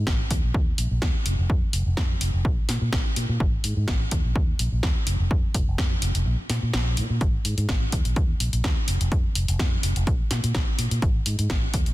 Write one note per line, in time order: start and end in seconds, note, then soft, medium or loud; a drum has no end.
0.07 0.23 G#1 medium
0.07 kick loud
0.07 snare loud
0.31 0.39 D#2 loud
0.31 kick medium
0.31 open hi-hat loud
0.44 0.51 A#1 medium
0.54 0.71 D#2 medium
0.54 kick loud
0.78 0.87 A#1 medium
0.78 open hi-hat loud
0.91 0.98 A#1 medium
1.02 1.10 D#2 medium
1.02 kick loud
1.02 snare loud
1.26 1.34 F1 medium
1.26 open hi-hat loud
1.39 1.46 F1 medium
1.50 1.62 F2 medium
1.50 kick loud
1.62 muted fingered electric bass stroke soft
1.73 1.82 F1 medium
1.73 open hi-hat loud
1.86 1.94 F1 medium
1.97 2.13 F2 medium
1.97 kick loud
1.97 snare loud
2.21 2.29 F1 medium
2.21 open hi-hat loud
2.34 2.41 F1 medium
2.45 2.57 A#1 medium
2.45 kick loud
2.58 muted fingered electric bass stroke soft
2.69 2.77 A#2 medium
2.69 snare medium
2.69 open hi-hat loud
2.82 2.89 A#2 medium
2.93 3.01 A#1 medium
2.93 kick loud
2.93 snare loud
3.16 3.25 A#2 medium
3.16 open hi-hat loud
3.29 3.36 A#2 medium
3.40 3.56 G#1 medium
3.40 kick loud
3.64 3.73 G#2 medium
3.64 open hi-hat loud
3.77 3.84 G#2 medium
3.88 4.04 G#1 medium
3.88 kick loud
3.88 snare loud
4.11 4.20 D#2 loud
4.11 kick medium
4.11 open hi-hat loud
4.25 4.32 A#1 medium
4.36 4.52 D#2 medium
4.36 kick loud
4.59 4.68 A#1 medium
4.59 open hi-hat medium
4.72 4.79 A#1 medium
4.83 4.91 D#2 medium
4.83 kick loud
4.83 snare loud
5.07 5.15 F1 medium
5.07 open hi-hat medium
5.20 5.27 F1 medium
5.31 5.43 F2 medium
5.31 kick loud
5.44 muted fingered electric bass stroke soft
5.54 5.63 F1 medium
5.54 kick medium
5.54 open hi-hat loud
5.68 5.75 F1 medium
5.78 5.94 F2 medium
5.78 kick loud
5.78 snare loud
6.02 6.11 F1 loud
6.02 open hi-hat loud
6.15 6.22 F1 medium
6.15 open hi-hat medium
6.26 6.34 A#1 medium
6.39 muted fingered electric bass stroke soft
6.50 6.58 A#2 medium
6.50 snare medium
6.50 open hi-hat medium
6.63 6.70 A#2 medium
6.74 6.99 A#1 medium
6.74 snare loud
6.97 7.06 A#2 medium
6.97 open hi-hat loud
7.10 7.17 A#2 medium
7.21 7.37 G#1 medium
7.21 kick loud
7.21 closed hi-hat medium
7.45 7.53 G#2 medium
7.45 open hi-hat loud
7.58 7.65 G#2 medium
7.58 closed hi-hat medium
7.69 7.85 G#1 medium
7.69 kick loud
7.69 snare loud
7.69 closed hi-hat medium
7.92 8.01 D#2 medium
7.92 kick medium
7.92 open hi-hat loud
8.05 8.13 A#1 loud
8.05 closed hi-hat medium
8.16 8.32 D#2 medium
8.16 kick loud
8.16 closed hi-hat medium
8.40 8.49 A#1 medium
8.40 open hi-hat loud
8.53 8.60 A#1 medium
8.53 closed hi-hat medium
8.64 8.72 D#2 medium
8.64 kick loud
8.64 snare loud
8.64 closed hi-hat medium
8.88 8.96 F1 medium
8.88 open hi-hat loud
9.01 9.08 F1 medium
9.01 closed hi-hat medium
9.12 9.24 F2 medium
9.12 kick loud
9.12 closed hi-hat medium
9.25 muted fingered electric bass stroke soft
9.35 9.44 F1 medium
9.35 open hi-hat loud
9.48 9.56 F1 medium
9.48 closed hi-hat medium
9.59 9.75 F2 loud
9.59 kick loud
9.59 snare loud
9.59 closed hi-hat soft
9.83 9.92 F1 loud
9.83 open hi-hat loud
9.96 10.03 F1 medium
9.96 closed hi-hat medium
10.07 10.20 A#1 medium
10.07 kick loud
10.07 closed hi-hat soft
10.20 muted fingered electric bass stroke soft
10.31 10.39 A#2 medium
10.31 snare medium
10.31 open hi-hat loud
10.44 10.51 A#2 medium
10.44 closed hi-hat medium
10.55 10.63 A#1 medium
10.55 kick loud
10.55 snare loud
10.55 closed hi-hat medium
10.79 10.87 A#2 medium
10.79 open hi-hat loud
10.91 10.98 A#2 medium
10.91 closed hi-hat medium
11.02 11.18 G#1 loud
11.02 kick loud
11.02 closed hi-hat soft
11.26 11.35 G#2 medium
11.26 open hi-hat loud
11.39 11.46 G#2 medium
11.39 closed hi-hat medium
11.50 11.66 G#1 loud
11.50 kick loud
11.50 snare loud
11.50 closed hi-hat soft
11.74 11.82 D#2 loud
11.74 kick medium
11.74 open hi-hat loud
11.86 11.94 A#1 medium
11.86 closed hi-hat medium